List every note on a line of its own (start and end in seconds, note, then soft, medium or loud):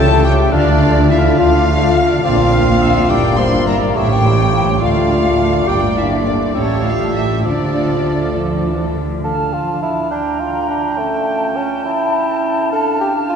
0.00 0.43 C#2 medium
0.00 0.43 C#3 medium
0.00 0.10 G3 soft
0.00 0.51 A3 medium
0.00 2.20 A3 medium
0.00 0.10 G4 soft
0.00 0.53 G4 medium
0.00 0.26 A4 medium
0.00 0.54 G5 medium
0.00 0.23 A5 medium
0.00 0.24 A5 medium
0.09 0.24 A3 medium
0.09 0.24 A4 soft
0.09 0.24 E5 soft
0.24 0.38 G3 soft
0.24 0.51 G4 medium
0.24 0.38 G4 soft
0.24 0.37 C#5 soft
0.24 0.52 G5 medium
0.24 0.32 G5 medium
0.38 0.53 A3 soft
0.38 0.53 A4 soft
0.38 0.52 E5 medium
0.52 1.28 D2 medium
0.52 1.29 D3 medium
0.52 0.66 F3 medium
0.52 1.37 A3 medium
0.52 1.11 D4 medium
0.52 2.24 F4 medium
0.52 0.66 F4 medium
0.52 1.08 D5 medium
0.52 1.10 D5 medium
0.52 0.66 F5 medium
0.52 1.39 F5 medium
0.67 0.82 A3 soft
0.67 0.82 D4 soft
0.67 0.81 D5 medium
0.81 0.96 F3 soft
0.81 0.96 F4 soft
0.81 0.95 F5 medium
0.95 1.10 A3 soft
0.95 1.10 D4 soft
0.95 1.09 D5 soft
1.09 1.24 F3 soft
1.09 1.38 E4 medium
1.09 1.24 F4 soft
1.09 1.38 E5 medium
1.09 1.39 E5 medium
1.09 1.23 F5 soft
1.24 1.39 A3 soft
1.24 1.39 D4 soft
1.24 1.38 D5 soft
1.38 2.14 D2 medium
1.38 2.14 D3 medium
1.38 1.53 F3 medium
1.38 2.22 A3 medium
1.38 1.95 F4 medium
1.38 1.53 F4 medium
1.38 1.53 F5 medium
1.38 2.23 F5 medium
1.38 2.22 F5 medium
1.53 1.67 A3 medium
1.53 1.67 D4 medium
1.53 1.67 D5 soft
1.67 1.81 F3 soft
1.67 1.81 F4 soft
1.67 1.80 F5 soft
1.81 1.96 A3 soft
1.81 1.96 D4 soft
1.81 1.95 D5 medium
1.95 2.10 F3 soft
1.95 2.10 F4 soft
1.95 2.09 F5 soft
2.09 2.24 A3 soft
2.09 2.24 D4 soft
2.09 2.23 D5 soft
2.23 3.00 A#1 medium
2.23 3.00 A#2 medium
2.23 3.81 A#3 medium
2.23 3.12 C4 medium
2.23 2.38 D4 medium
2.23 3.81 D4 medium
2.23 3.12 F4 medium
2.23 2.38 F4 medium
2.23 2.37 D5 medium
2.23 2.37 F5 medium
2.23 3.08 F5 medium
2.37 2.53 A#3 soft
2.37 2.52 D4 soft
2.37 2.52 D5 soft
2.51 2.67 D4 soft
2.51 2.67 F4 soft
2.51 2.66 F5 medium
2.51 2.84 F5 medium
2.65 2.82 A#3 soft
2.65 2.81 D4 soft
2.65 2.81 D5 soft
2.79 2.95 D4 soft
2.79 2.95 F4 soft
2.79 3.12 E5 medium
2.79 2.93 F5 soft
2.94 3.10 A#3 soft
2.94 3.10 D4 soft
2.94 3.09 D5 soft
3.09 3.86 G1 medium
3.09 3.86 G2 medium
3.09 3.24 G3 soft
3.09 3.95 A#3 medium
3.09 3.24 E4 soft
3.09 3.40 G4 medium
3.09 3.98 D5 medium
3.09 3.23 E5 soft
3.09 3.38 G5 medium
3.23 3.39 A#3 soft
3.23 3.39 D4 soft
3.23 3.38 D5 soft
3.37 3.53 G3 soft
3.37 3.54 E4 soft
3.37 3.69 C5 medium
3.37 3.53 E5 soft
3.37 3.67 C6 medium
3.37 3.45 C6 medium
3.52 3.68 A#3 soft
3.52 3.68 D4 soft
3.52 3.67 D5 soft
3.67 3.81 G3 soft
3.67 3.81 E4 soft
3.67 3.95 A#4 medium
3.67 3.80 E5 soft
3.67 3.95 A#5 medium
3.67 3.75 A#5 medium
3.82 3.97 A#3 soft
3.82 3.96 D4 soft
3.82 3.96 D5 soft
3.95 4.72 A1 medium
3.95 4.72 A2 medium
3.95 4.10 G3 soft
3.95 4.09 A3 medium
3.95 5.65 A3 soft
3.95 4.81 C#4 soft
3.95 4.10 E4 soft
3.95 4.80 G4 medium
3.95 4.83 C#5 soft
3.95 4.09 E5 medium
3.95 4.80 G5 medium
3.95 4.82 G5 medium
4.10 4.25 A3 soft
4.10 4.25 C#4 soft
4.10 4.24 C#5 soft
4.24 4.52 G3 medium
4.24 4.40 G3 soft
4.24 4.39 E4 soft
4.24 4.39 E5 soft
4.38 4.54 A3 soft
4.38 4.54 C#4 soft
4.38 4.53 C#5 soft
4.53 4.67 G3 soft
4.53 4.66 A#3 medium
4.53 4.67 E4 soft
4.53 4.66 E5 soft
4.67 4.82 A3 soft
4.67 4.82 C#4 soft
4.67 4.81 C#5 soft
4.81 5.57 D2 medium
4.81 5.57 D2 soft
4.81 4.96 F3 soft
4.81 5.66 A3 medium
4.81 4.96 D4 soft
4.81 5.68 D4 soft
4.81 5.65 F4 medium
4.81 5.67 D5 medium
4.81 4.95 F5 soft
4.81 5.66 F5 medium
4.96 5.11 A3 soft
4.96 5.11 F4 soft
4.96 5.10 D5 soft
5.10 5.25 F3 soft
5.10 5.25 D4 soft
5.10 5.25 F5 soft
5.25 5.40 A3 soft
5.25 5.40 F4 soft
5.25 5.39 D5 soft
5.39 5.53 F3 soft
5.39 5.53 D4 soft
5.39 5.52 F5 soft
5.53 5.68 A3 soft
5.53 5.68 F4 soft
5.53 5.67 D5 soft
5.67 6.51 G1 soft
5.67 6.51 G2 soft
5.67 6.51 A#3 soft
5.67 6.13 A#3 soft
5.67 6.52 A#3 soft
5.67 6.51 D4 medium
5.67 6.51 D4 soft
5.67 5.80 G4 medium
5.67 6.51 D5 soft
5.67 5.96 G5 medium
5.67 5.97 G5 medium
5.95 6.26 E4 medium
5.95 6.25 E5 medium
5.95 6.06 E5 soft
6.11 6.54 A3 soft
6.25 6.54 D4 soft
6.25 6.54 D5 soft
6.25 6.34 D5 soft
6.54 7.43 A1 soft
6.54 7.43 A2 soft
6.54 7.43 G3 soft
6.54 7.44 A3 soft
6.54 6.86 C#4 medium
6.54 7.43 G4 soft
6.54 7.46 G4 soft
6.54 7.44 A4 soft
6.54 6.84 C#5 soft
6.54 6.84 C#5 medium
6.54 7.47 E5 soft
6.84 7.16 F4 medium
6.84 7.14 F5 soft
6.84 7.15 F5 soft
7.14 7.46 E4 soft
7.14 7.45 E5 soft
7.14 7.44 E5 soft
7.44 9.04 D2 soft
7.44 8.29 D3 soft
7.44 8.92 F3 soft
7.44 9.01 A3 soft
7.44 8.92 A3 soft
7.44 8.35 D4 medium
7.44 9.04 F4 soft
7.44 8.92 F4 soft
7.44 9.01 A4 soft
7.44 8.34 D5 soft
7.44 8.95 D5 soft
8.35 8.63 F3 soft
8.65 8.95 E3 soft
8.95 9.24 D3 soft
9.24 10.95 D4 soft
9.24 9.55 A4 medium
9.24 10.13 F5 soft
9.24 10.08 A5 soft
9.53 9.82 F4 medium
9.83 10.10 E4 medium
10.11 10.41 D4 medium
10.11 12.71 G5 soft
10.11 10.99 A#5 soft
10.40 10.69 F4 medium
10.69 10.99 D4 medium
10.98 11.58 A3 medium
10.98 12.73 C#4 soft
10.98 13.36 A5 medium
11.56 11.85 C#4 medium
11.85 12.70 E4 medium
12.72 13.36 D4 medium
12.72 13.00 A4 medium
12.72 13.36 F5 soft
13.01 13.14 G4 medium
13.29 13.36 F4 medium